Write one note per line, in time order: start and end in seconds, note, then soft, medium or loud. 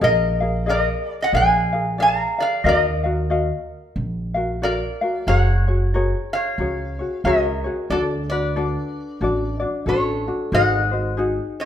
0.01 0.87 A#1 loud
0.01 0.41 G#4 medium
0.01 0.40 A#4 medium
0.01 0.65 A#4 medium
0.01 0.41 D#5 medium
0.01 0.69 D#5 loud
0.01 0.39 F5 medium
0.40 0.66 G#4 soft
0.40 0.67 A#4 soft
0.40 0.67 F5 medium
0.66 1.32 G#4 medium
0.66 1.34 A#4 medium
0.66 1.17 A#4 medium
0.66 1.33 D#5 medium
0.66 1.34 F5 medium
0.70 1.09 D#5 medium
1.09 1.21 D5 medium
1.22 1.34 D#5 medium
1.22 1.34 F#5 medium
1.33 2.18 A#1 medium
1.33 1.73 G#4 medium
1.33 1.72 A#4 medium
1.33 1.72 D5 medium
1.33 1.96 F5 medium
1.33 1.71 F5 medium
1.33 2.02 G#5 medium
1.73 1.98 G#4 soft
1.73 1.98 A#4 soft
1.73 1.99 F5 soft
1.98 2.38 G#4 medium
1.98 2.38 A#4 medium
1.98 2.38 D5 medium
1.98 2.36 F5 medium
1.98 2.37 F5 medium
2.02 2.41 A#5 medium
2.38 2.64 G#4 soft
2.38 2.64 A#4 soft
2.38 2.64 D5 medium
2.38 2.64 F5 medium
2.38 2.68 F5 medium
2.64 3.50 D#2 loud
2.64 3.04 F#4 medium
2.64 3.04 A#4 medium
2.64 4.58 A#4 medium
2.64 3.03 D#5 medium
2.64 3.02 F5 medium
2.69 4.60 D#5 medium
3.04 3.29 F#4 soft
3.04 3.30 A#4 medium
3.04 3.30 F5 soft
3.30 4.36 F#4 medium
3.30 4.36 A#4 medium
3.30 4.35 D#5 medium
3.30 4.33 F5 medium
3.96 4.81 A#1 medium
4.34 4.61 F#4 soft
4.34 4.61 A#4 medium
4.34 4.61 F5 medium
4.62 5.01 F#4 medium
4.62 5.01 A#4 medium
4.62 5.25 A#4 medium
4.62 5.29 D5 medium
4.62 5.00 F5 medium
5.01 5.27 F#4 soft
5.01 5.26 A#4 medium
5.01 5.28 F5 medium
5.27 6.12 F#1 medium
5.27 5.67 F#4 medium
5.27 5.66 G#4 medium
5.27 5.66 A#4 medium
5.27 6.29 C#5 medium
5.27 5.66 C#5 medium
5.27 6.33 F#5 loud
5.68 5.93 F#4 soft
5.68 5.94 G#4 soft
5.68 5.94 C#5 medium
5.94 6.59 F#4 medium
5.94 6.59 G#4 medium
5.94 6.58 A#4 medium
5.94 6.60 C#5 medium
6.33 7.22 C#5 medium
6.33 7.21 F5 medium
6.58 7.01 C#2 medium
6.58 6.98 F#4 medium
6.58 6.99 G#4 medium
6.58 6.98 A#4 soft
6.58 6.98 C#5 medium
6.99 7.24 F#4 soft
6.99 7.25 G#4 soft
6.99 7.24 C#5 soft
7.24 7.67 C#2 medium
7.24 7.64 F#4 medium
7.24 7.64 G#4 medium
7.24 7.64 A#4 medium
7.24 7.87 A#4 medium
7.24 7.63 C#5 medium
7.24 7.90 D#5 medium
7.64 7.91 F#4 soft
7.64 7.91 G#4 soft
7.64 7.90 C#5 medium
7.90 8.75 D2 medium
7.90 8.30 D4 medium
7.90 8.30 F#4 medium
7.90 8.30 A4 medium
7.90 8.02 A4 medium
7.90 8.01 D5 medium
7.90 8.30 D5 medium
8.30 8.55 D4 soft
8.30 8.56 F#4 soft
8.30 9.57 B4 soft
8.30 9.57 D5 medium
8.30 8.56 D5 medium
8.56 9.21 D4 medium
8.56 9.22 F#4 medium
8.56 9.20 A4 medium
8.56 9.22 D5 medium
9.21 9.64 A1 medium
9.21 9.61 D4 medium
9.21 9.59 F#4 medium
9.21 9.60 A4 medium
9.21 9.58 D5 medium
9.60 9.87 D4 medium
9.60 9.87 F#4 medium
9.60 9.86 D5 medium
9.86 10.29 A1 medium
9.86 10.26 D4 medium
9.86 10.26 F#4 medium
9.86 10.26 A4 medium
9.86 10.50 A4 medium
9.86 10.55 C#5 medium
10.28 10.53 D4 soft
10.28 10.52 F#4 medium
10.52 11.38 G#1 medium
10.52 10.92 D#4 medium
10.52 10.92 F#4 medium
10.52 10.92 G#4 medium
10.52 10.90 C5 medium
10.52 11.15 D#5 medium
10.52 11.15 F#5 loud
10.91 11.17 D#4 soft
10.91 11.18 F#4 soft
10.91 11.18 C5 soft
11.17 11.65 D#4 medium
11.17 11.65 F#4 medium
11.17 11.65 G#4 medium
11.60 11.65 C#5 medium
11.60 11.65 F5 medium